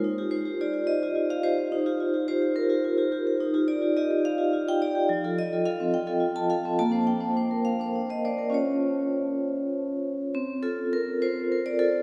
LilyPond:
\new Staff \with { instrumentName = "Vibraphone" } { \time 6/8 \key ees \major \tempo 4. = 70 << { r8 c''8 d''8 ees''8. f''16 c''8~ | c''4 c''8 bes'4. | \key c \dorian r8 d''8 ees''8 f''8. g''16 d''8 | r8 ees''8 f''8 g''8. a''16 f''8 |
a''8 g''4 f''8. ees''16 d''8 | des''4. r4. | r8 a'8 bes'8 c''8. d''16 a'8 | } \\ { ees'16 <f' g'>16 f'16 <f' g'>16 <f' g'>16 g'8 <f' g'>16 f'16 <f' g'>16 <f' g'>16 g'16 | ees'16 <f' g'>16 f'16 <f' g'>16 <f' g'>16 g'8 <f' g'>16 f'16 <f' g'>16 <f' g'>16 g'16 | ees'16 <f' g'>16 f'16 <f' g'>16 <f' g'>16 g'8 <f' g'>16 f'16 <f' g'>16 <f' g'>16 g'16 | f16 <f' a'>16 f'16 <f' a'>16 <f' a'>16 c'8 <f' a'>16 f'16 <f' a'>16 <f' a'>16 c'16 |
bes16 <d' c''>16 d'16 <d' c''>16 <d' c''>16 bes'8 <d' c''>16 d'16 <d' c''>16 <d' c''>16 bes'16 | <des' f' c''>2. | c'8 f'8. r16 f'8 bes'8 f'8 | } >> }